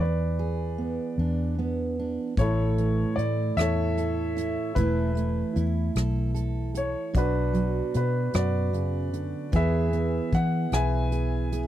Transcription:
0.00 fingered electric bass E2, steel-string acoustic guitar E3, upright piano B4 D5
0.39 steel-string acoustic guitar G#4
0.78 steel-string acoustic guitar B3
1.18 fingered electric bass E2, steel-string acoustic guitar D4
1.59 steel-string acoustic guitar B3
1.99 steel-string acoustic guitar D4
2.37 fingered electric bass A1, steel-string acoustic guitar A2 A4, upright piano E4 A4 C#5, kick, closed hi-hat
2.78 steel-string acoustic guitar E3, closed hi-hat
3.16 fingered electric bass A2, upright piano D5, closed hi-hat
3.57 fingered electric bass E2, steel-string acoustic guitar E4, upright piano E5, cross-stick, closed hi-hat
3.61 upright piano A4 C#5
3.97 steel-string acoustic guitar A4, closed hi-hat
4.37 steel-string acoustic guitar E4, closed hi-hat
4.75 fingered electric bass E1, steel-string acoustic guitar E3 A3 E4 A4, upright piano E4 B4, kick, closed hi-hat
5.15 steel-string acoustic guitar A3, closed hi-hat
5.56 fingered electric bass E2, steel-string acoustic guitar E4, closed hi-hat
5.95 fingered electric bass B1, steel-string acoustic guitar A4, cross-stick, closed hi-hat
6.34 steel-string acoustic guitar A4, closed hi-hat
6.75 steel-string acoustic guitar A4, upright piano C#5, closed hi-hat
7.13 fingered electric bass B1, steel-string acoustic guitar B2 F#4, upright piano D4 F#4, kick, closed hi-hat
7.18 upright piano B4
7.53 steel-string acoustic guitar F#3, closed hi-hat
7.94 fingered electric bass B2, steel-string acoustic guitar B3, upright piano B4, closed hi-hat
8.33 fingered electric bass F#2, steel-string acoustic guitar B2, upright piano F#4 B4 D5, cross-stick, closed hi-hat
8.73 steel-string acoustic guitar C#3, closed hi-hat
9.13 steel-string acoustic guitar D3, closed hi-hat
9.52 fingered electric bass E2, steel-string acoustic guitar E3 B3 E4 G#4, upright piano G#4 E5, kick, closed hi-hat
9.56 upright piano B4
9.93 steel-string acoustic guitar B3, closed hi-hat
10.32 fingered electric bass E3, steel-string acoustic guitar E4, upright piano F#5, kick, closed hi-hat
10.72 fingered electric bass B1, steel-string acoustic guitar G#4, upright piano B4 E5 G#5, cross-stick, closed hi-hat
11.12 steel-string acoustic guitar G#4, closed hi-hat
11.52 steel-string acoustic guitar G#4, closed hi-hat

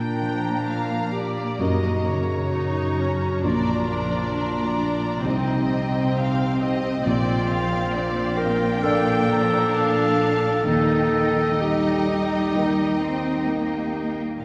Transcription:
Already playing: cello section A#2, grand piano A#2 D4 F4 A#4, harp A#2, viola section A#3, clarinet D4, violin section G5 A#5
0.21 harp F3
0.67 harp F4, violin section F5
1.12 clarinet G4, harp D5, violin section D5
1.58 cello section F#2, harp F#2, grand piano F#2 C#4 D#4 A#4, clarinet F#4, violin section D#5 A#5
2.06 harp C#3, violin section C#5
2.53 viola section D#4, harp D#4, violin section A#5
2.99 viola section C#4, harp C#5
3.43 grand piano A#1 A#3 D4 D5, harp A#2, cello section A#2, viola section D4, clarinet F4, violin section D5 A#5
3.87 harp F3, violin section D5
4.33 viola section D4, harp D4, violin section A#5
4.78 viola section D4, harp D5
5.22 grand piano C2 G3 D#4 C5, cello section C3, harp C3, viola section C4, clarinet D#4, violin section D#5 G5
5.67 viola section C4, harp C4
6.15 harp D#4, violin section F5
6.59 harp C5, violin section D#5
7.03 grand piano A#1, cello section A#2, harp A#2, clarinet F4, violin section D5 G5
7.49 harp F3, violin section F5
7.93 harp D4, violin section D5 F5
8.37 clarinet A#4, harp D5, violin section G5
8.81 harp A#2, grand piano A#3 D4 D5, viola section D4, clarinet A4, violin section F5
9.28 harp F3, violin section A#5
9.72 harp D4, violin section F5 A5
10.20 harp D5
10.66 grand piano D#2, harp D#3, cello section D#3, viola section D#4, clarinet A4, violin section D#5 G5
11.13 harp A#3
11.60 cello section G3, clarinet G4, harp A#4
12.07 harp D#4
12.54 harp D#3, grand piano A#3 D#4 A#4
13.01 harp A#3, cello section C4
13.47 cello section A#3, harp A#4
13.96 harp D#4

